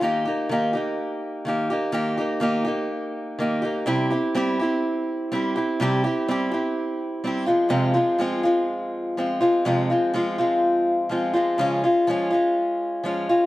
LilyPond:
\new Staff \with { instrumentName = "Steel-string acoustic guitar" } { \time 4/4 \key ees \mixolydian \tempo 4 = 124 <ees bes ees' g'>8 <bes ees' g'>8 <ees bes ees' g'>8 <bes ees' g'>4. <ees bes ees' g'>8 <bes ees' g'>8 | <ees bes ees' g'>8 <bes ees' g'>8 <ees bes ees' g'>8 <bes ees' g'>4. <ees bes ees' g'>8 <bes ees' g'>8 | <c g c' e' g'>8 <c' e' g'>8 <g c' e' g'>8 <c' e' g'>4. <g c' e' g'>8 <c' e' g'>8 | <c g c' e' g'>8 <c' e' g'>8 <g c' e' g'>8 <c' e' g'>4. <g c' e' g'>8 <f aes c' f'>8 |
<f, c f aes c' f'>8 <f aes c' f'>8 <f aes c' f'>8 <f aes c' f'>4. <f aes c' f'>8 <f aes c' f'>8 | <f, c f aes c' f'>8 <f aes c' f'>8 <f aes c' f'>8 <f aes c' f'>4. <f aes c' f'>8 <f aes c' f'>8 | <des f aes des' f'>8 <aes des' f'>8 <f aes des' f'>8 <aes des' f'>4. <f aes des' f'>8 <aes des' f'>8 | }